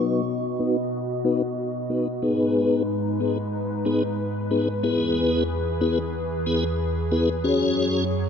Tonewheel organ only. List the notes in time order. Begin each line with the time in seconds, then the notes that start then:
Already playing: B3 D#4 F#4 B4
0.59 B3 D#4 F#4 B4
1.25 B3 D#4 F#4 B4
1.90 B3 D#4 F#4 B4
2.22 B3 D#4 G#4 B4
3.20 B3 D#4 G#4 B4
3.85 B3 D#4 G#4 B4
4.51 B3 D#4 G#4 B4
4.83 B3 E4 G#4 B4
5.81 B3 E4 G#4 B4
6.46 B3 E4 G#4 B4
7.11 B3 E4 G#4 B4
7.44 C#4 F#4 G#4 C#5